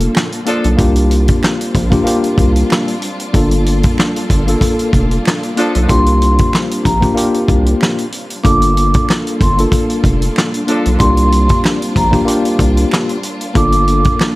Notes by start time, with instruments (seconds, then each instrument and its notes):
Already playing: string section G3 A#3 D4 F4 A4, tine electric piano A#3 D4 F4 A4
0.00 closed hi-hat
0.15 finger snap, snare, clap
0.32 closed hi-hat
0.46 horn section F3 D4 A4, tine electric piano A#3 D4 F4 A4, closed hi-hat
0.64 analog synth bass B1, closed hi-hat
0.77 analog synth bass C2, string section C3 A#3, tine electric piano A#3 D4 F4 G4, kick, closed hi-hat
0.96 closed hi-hat
1.11 closed hi-hat
1.28 kick, closed hi-hat
1.43 finger snap, snare, clap
1.61 closed hi-hat
1.75 analog synth bass A#1, kick, closed hi-hat
1.90 tine electric piano A#3 D4 F4 G4, kick, closed hi-hat
2.04 tine electric piano A#3 D4 F4 G4, closed hi-hat
2.24 closed hi-hat
2.38 analog synth bass C2, kick, closed hi-hat
2.56 closed hi-hat
2.70 finger snap, snare, clap
2.88 closed hi-hat
3.02 closed hi-hat
3.20 closed hi-hat
3.32 analog synth bass G1, string section A#3 A4, tine electric piano A#3 D4 F4 A4, kick, closed hi-hat
3.51 closed hi-hat
3.66 closed hi-hat
3.83 kick, closed hi-hat
3.98 finger snap, snare, clap
4.16 closed hi-hat
4.30 analog synth bass G1, kick, closed hi-hat
4.47 tine electric piano A#3 D4 F4 A4, closed hi-hat
4.61 kick, closed hi-hat
4.79 closed hi-hat
4.93 analog synth bass F1, kick, closed hi-hat
5.11 closed hi-hat
5.25 finger snap, snare, clap
5.43 closed hi-hat
5.56 horn section F3 D4 A4, tine electric piano A#3 D4 F4 A4, closed hi-hat
5.75 analog synth bass B1, closed hi-hat
5.88 analog synth bass C2, string section C3 A#3, tine electric piano A#3 D4 F4 G4, vibraphone C6, kick, closed hi-hat
6.06 closed hi-hat
6.22 closed hi-hat
6.39 kick, closed hi-hat
6.53 finger snap, snare, clap
6.71 closed hi-hat
6.85 analog synth bass A#1, vibraphone A#5, kick, closed hi-hat
7.01 tine electric piano A#3 D4 F4 G4, kick, closed hi-hat
7.15 tine electric piano A#3 D4 F4 G4, closed hi-hat
7.34 closed hi-hat
7.48 analog synth bass C2, kick, closed hi-hat
7.66 closed hi-hat
7.81 finger snap, snare, clap
7.98 closed hi-hat
8.12 closed hi-hat
8.30 closed hi-hat
8.43 analog synth bass G1, string section G3 A#3 D4 F4 A4, tine electric piano A#3 D4 F4 A4, vibraphone D6, kick, closed hi-hat
8.62 closed hi-hat
8.77 closed hi-hat
8.94 kick, closed hi-hat
9.09 finger snap, snare, clap
9.27 closed hi-hat
9.41 analog synth bass G1, vibraphone C6, kick, closed hi-hat
9.57 tine electric piano A#3 D4 F4 A4, closed hi-hat
9.72 kick, closed hi-hat
9.90 closed hi-hat
10.04 analog synth bass F1, kick, closed hi-hat
10.22 closed hi-hat
10.36 finger snap, snare, clap
10.54 closed hi-hat
10.67 horn section F3 D4 A4, tine electric piano A#3 D4 F4 A4, closed hi-hat
10.86 analog synth bass B1, closed hi-hat
10.98 analog synth bass C2, string section C3 A#3, tine electric piano A#3 D4 F4 G4, vibraphone C6, kick, closed hi-hat
11.17 closed hi-hat
11.32 closed hi-hat
11.49 kick, closed hi-hat
11.64 finger snap, snare, clap
11.82 closed hi-hat
11.96 analog synth bass A#1, vibraphone A#5, kick, closed hi-hat
12.11 tine electric piano A#3 D4 F4 G4, kick, closed hi-hat
12.25 tine electric piano A#3 D4 F4 G4, closed hi-hat
12.45 closed hi-hat
12.59 analog synth bass C2, kick, closed hi-hat
12.77 closed hi-hat
12.91 finger snap, snare, clap
13.09 closed hi-hat
13.23 closed hi-hat
13.41 closed hi-hat
13.53 analog synth bass G1, string section A#3 A4, tine electric piano A#3 D4 F4 A4, vibraphone D6, kick, closed hi-hat
13.72 closed hi-hat
13.88 closed hi-hat
14.04 kick, closed hi-hat
14.19 finger snap, snare, clap